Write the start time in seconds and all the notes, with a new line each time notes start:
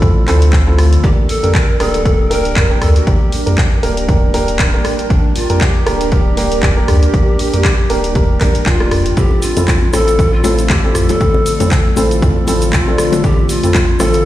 Already playing: A1 D3 F3 A3 D5
0.02 C4 E4 F4 A4, kick, closed hi-hat, mid tom
0.27 D2 C4 E4 F4 A4, clap, open hi-hat
0.42 closed hi-hat
0.53 kick, clap, closed hi-hat
0.67 C4 E4 F4 A4
0.78 cross-stick, open hi-hat
0.93 closed hi-hat
1.03 G1 G3 A#3 D4 G4 A#4 G5, kick, closed hi-hat
1.29 A4, open hi-hat
1.43 A#3 D4 G4 A#4, closed hi-hat, mid tom
1.54 A#4, kick, clap, closed hi-hat
1.80 D1 A#3 D4 G4 A4 A#4, cross-stick, open hi-hat
1.94 closed hi-hat
2.05 A#3 D4 G4 A#4, kick, closed hi-hat
2.30 A#3 D4 G4 A#4, open hi-hat
2.45 closed hi-hat
2.56 kick, clap, closed hi-hat, mid tom
2.70 A#3 D4 G4 A#4
2.81 D2 A4, cross-stick, mid tom, open hi-hat
2.96 G4, closed hi-hat
3.07 G1 A#3 D4 G4 A#4, kick, closed hi-hat
3.32 open hi-hat
3.46 A#3 D4 G4 A#4, closed hi-hat, mid tom
3.58 kick, clap, closed hi-hat
3.83 D1 A#3 D4 G4 A#4, open hi-hat
3.97 closed hi-hat
4.09 A#3 D4 G4 A#4, kick, closed hi-hat, mid tom
4.34 A#3 D4 G4 A#4, open hi-hat
4.48 closed hi-hat
4.59 kick, clap, closed hi-hat
4.74 A#3 D4 G4 A#4
4.85 cross-stick, open hi-hat
4.99 closed hi-hat
5.10 G1 A#3 D4 G4 A#4, kick, closed hi-hat
5.36 F4, open hi-hat
5.50 A#3 D4 G4 A#4, closed hi-hat, mid tom
5.61 G4, kick, clap, closed hi-hat
5.86 D1 A#3 D4 G4 A#4, cross-stick, open hi-hat
6.01 closed hi-hat
6.12 A#3 D4 G4 A#4, kick, closed hi-hat
6.37 A#3 D4 G4 A#4, open hi-hat
6.52 closed hi-hat
6.63 kick, clap, closed hi-hat, mid tom
6.77 A#3 D4 G4 A#4
6.88 D2, cross-stick, mid tom, open hi-hat
7.03 closed hi-hat
7.14 G1 A#3 D4 G4 A#4, kick, closed hi-hat
7.39 open hi-hat
7.53 A#3 D4 G4 A#4, closed hi-hat, mid tom
7.64 kick, clap, closed hi-hat
7.90 D1 A#3 D4 G4 A#4, open hi-hat
8.04 closed hi-hat
8.15 A#3 D4 G4 A#4, kick, closed hi-hat, mid tom
8.41 A#1 A#3 D4 G4 A#4, kick, clap, open hi-hat
8.55 closed hi-hat
8.66 D1 F4, kick, clap, closed hi-hat
8.80 A#3 D4 G4 A#4, cross-stick
8.91 cross-stick, mid tom, open hi-hat
9.06 G1, closed hi-hat
9.17 D2 D3 F3 A3 C4 E4 F4 G4 A4 D5, kick, closed hi-hat, shaker
9.31 low bongo
9.42 F4, open hi-hat, shaker
9.57 C4 E4 F4 A4, closed hi-hat, mid tom, low bongo, shaker
9.68 kick, clap, closed hi-hat, shaker
9.83 low bongo
9.93 A1 C4 E4 F4 A4, cross-stick, open hi-hat, high bongo, shaker
10.08 closed hi-hat, shaker
10.19 C4 E4 F4 A4, kick, closed hi-hat, low bongo, shaker
10.33 F4
10.44 C4 E4 F4 A4, open hi-hat, high bongo, low bongo, shaker
10.58 closed hi-hat, shaker
10.70 G4, kick, clap, closed hi-hat, mid tom, low bongo, shaker
10.84 C4 E4 F4 A4
10.95 A1, cross-stick, mid tom, open hi-hat, shaker
11.09 A4, closed hi-hat, high bongo, low bongo, shaker
11.20 D2 C4 E4 F4 A4, kick, closed hi-hat, shaker
11.34 low bongo
11.46 open hi-hat, shaker
11.60 C4 E4 F4 A4, closed hi-hat, mid tom, high bongo, low bongo, shaker
11.71 kick, clap, closed hi-hat, shaker
11.97 A1 C4 E4 F4 A4, open hi-hat, high bongo, low bongo, shaker
12.11 closed hi-hat, shaker
12.22 C4 E4 F4 A4, kick, closed hi-hat, mid tom, low bongo, shaker
12.47 C4 E4 F4 A4, open hi-hat, low bongo, shaker
12.62 closed hi-hat, shaker
12.73 F4, kick, clap, closed hi-hat, shaker
12.87 C4 D4 F4 A4, low bongo
12.98 cross-stick, open hi-hat, shaker
13.12 closed hi-hat, high bongo, low bongo, shaker
13.24 D2 C4 D4 E4 F4 G4 A4, kick, closed hi-hat, shaker
13.39 low bongo
13.49 F4, open hi-hat, shaker
13.63 C4 E4 F4 A4, closed hi-hat, mid tom, shaker
13.74 kick, clap, closed hi-hat, low bongo, shaker
14.00 A1 C4 E4 F4 A4, cross-stick, open hi-hat, high bongo, low bongo, shaker
14.13 closed hi-hat, shaker